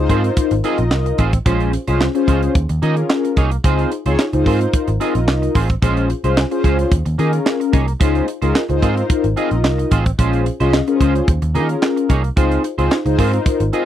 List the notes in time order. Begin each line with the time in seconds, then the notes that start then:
0.09 G#2 C4 D#4 F4 G#4 A#4 C5, kick, closed hi-hat
0.24 muted clean electric guitar stroke, closed hi-hat
0.37 kick, closed hi-hat
0.51 G#1, muted clean electric guitar stroke, closed hi-hat
0.64 C4 D#4 F4 G#4 A#4 D#5, closed hi-hat
0.78 A#1, muted clean electric guitar stroke, closed hi-hat
0.91 C2, muted clean electric guitar stroke, snare, clap
1.06 muted clean electric guitar stroke, closed hi-hat
1.18 A1 C4 F4 G#4 C5, kick, closed hi-hat
1.33 muted clean electric guitar stroke, kick, closed hi-hat
1.45 A#1 G#3 C#4 F4 G#4 C5, kick, closed hi-hat
1.60 closed hi-hat
1.73 muted clean electric guitar stroke, closed hi-hat
1.87 C2 G#3 C#4 F4 G#4 C5, closed hi-hat
2.01 snare, clap
2.14 C#4 F4 G#4 C5, muted clean electric guitar stroke, closed hi-hat
2.27 C#2 G#3 C#4 F4 C5, kick, closed hi-hat
2.42 muted clean electric guitar stroke, closed hi-hat
2.55 D#2, kick, closed hi-hat
2.69 D#2, muted clean electric guitar stroke, closed hi-hat
2.82 D#3 A#3 C#4 D#4 F4 G#4 A#4 D#5, closed hi-hat
2.97 muted clean electric guitar stroke, closed hi-hat
3.09 muted clean electric guitar stroke, snare, clap
3.24 muted clean electric guitar stroke, closed hi-hat
3.37 C2 A#3 D#4 G#4 C#5, kick, closed hi-hat
3.51 muted clean electric guitar stroke, closed hi-hat
3.64 C#2 C4 D#4 F4 G#4 C5, kick, closed hi-hat
3.79 closed hi-hat
3.91 muted clean electric guitar stroke, closed hi-hat
4.06 C#2 C4 D#4 F4 G#4 C5 C#5, closed hi-hat
4.19 snare, clap
4.33 C#2 D#4 F4 G#4 C5, muted clean electric guitar stroke, closed hi-hat
4.46 G#2 C4 D#4 F4 G#4 A#4 C5, kick, open hi-hat
4.61 muted clean electric guitar stroke, closed hi-hat
4.73 kick, closed hi-hat
4.88 G#1, muted clean electric guitar stroke, closed hi-hat
5.00 C4 D#4 F4 G#4 A#4 D#5, closed hi-hat
5.15 A#1, muted clean electric guitar stroke, closed hi-hat
5.28 C2, muted clean electric guitar stroke, snare, clap
5.42 muted clean electric guitar stroke, closed hi-hat
5.55 A1 C4 F4 G#4 C5, kick, open hi-hat
5.69 muted clean electric guitar stroke, kick, closed hi-hat
5.82 A#1 G#3 C#4 F4 G#4 C5, kick, closed hi-hat
5.97 closed hi-hat
6.10 muted clean electric guitar stroke, closed hi-hat
6.24 C2 G#3 C#4 F4 G#4 C5, closed hi-hat
6.37 snare, clap
6.51 C#4 F4 G#4 C5, muted clean electric guitar stroke, closed hi-hat
6.64 C#2 G#3 C#4 F4 C5, kick, closed hi-hat
6.78 muted clean electric guitar stroke, closed hi-hat
6.91 D#2, kick, closed hi-hat
7.05 D#2, muted clean electric guitar stroke, closed hi-hat
7.18 D#3 A#3 C#4 D#4 F4 G#4 A#4 D#5, closed hi-hat
7.33 muted clean electric guitar stroke, closed hi-hat
7.45 muted clean electric guitar stroke, snare, clap
7.60 muted clean electric guitar stroke, closed hi-hat
7.73 C2 A#3 D#4 G#4 C#5, kick, closed hi-hat
7.87 muted clean electric guitar stroke, closed hi-hat
8.00 C#2 G#3 C#4 D#4 F4 G#4 C5, kick, closed hi-hat
8.15 closed hi-hat
8.27 muted clean electric guitar stroke, closed hi-hat
8.42 C#2 G#3 C#4 D#4 F4 G#4 A#4 C5, closed hi-hat
8.55 snare, clap
8.69 C#2 D#4 F4 G#4 C5, muted clean electric guitar stroke, closed hi-hat
8.82 G#2 C4 D#4 F4 G#4 A#4 C5, kick, closed hi-hat
8.96 muted clean electric guitar stroke, closed hi-hat
9.10 kick, closed hi-hat
9.24 G#1, muted clean electric guitar stroke, closed hi-hat
9.36 C4 D#4 F4 G#4 A#4 D#5, closed hi-hat
9.51 A#1, muted clean electric guitar stroke, closed hi-hat
9.64 C2, muted clean electric guitar stroke, snare, clap
9.78 muted clean electric guitar stroke, closed hi-hat
9.91 A1 C4 F4 G#4 C5, kick, closed hi-hat
10.06 muted clean electric guitar stroke, kick, closed hi-hat
10.18 A#1 G#3 C#4 F4 G#4 C5, kick, closed hi-hat
10.33 closed hi-hat
10.46 muted clean electric guitar stroke, closed hi-hat
10.60 C2 G#3 C#4 F4 G#4 C5 D#5, closed hi-hat
10.74 snare, clap
10.87 C#4 F4 G#4 A#4, muted clean electric guitar stroke, closed hi-hat
10.94 C5
11.00 C#2 G#3 C#4 F4 C5, kick, closed hi-hat
11.15 muted clean electric guitar stroke, closed hi-hat
11.28 D#2, kick, closed hi-hat
11.42 D#2, muted clean electric guitar stroke, closed hi-hat
11.55 D#3 A#3 C#4 D#4 F4 G#4 A#4 D#5, closed hi-hat
11.69 muted clean electric guitar stroke, closed hi-hat
11.82 muted clean electric guitar stroke, snare, clap
11.96 muted clean electric guitar stroke, closed hi-hat
12.09 C2 A#3 D#4 G#4 C#5, kick, closed hi-hat
12.24 muted clean electric guitar stroke, closed hi-hat
12.36 C#2 C4 D#4 F4 G#4 C5, kick, closed hi-hat
12.51 closed hi-hat
12.64 muted clean electric guitar stroke, closed hi-hat
12.78 C#2 C4 D#4 F4 G#4 C5, closed hi-hat
12.91 snare, clap
13.05 C#2 D#4 F4 G#4 C5, muted clean electric guitar stroke, closed hi-hat
13.18 G#2 C4 D#4 F4 G#4 A#4 C5, kick, open hi-hat
13.33 muted clean electric guitar stroke, closed hi-hat
13.46 kick, closed hi-hat
13.60 G#1, muted clean electric guitar stroke, closed hi-hat
13.72 C4 D#4 F4 G#4 A#4 C5 D#5, closed hi-hat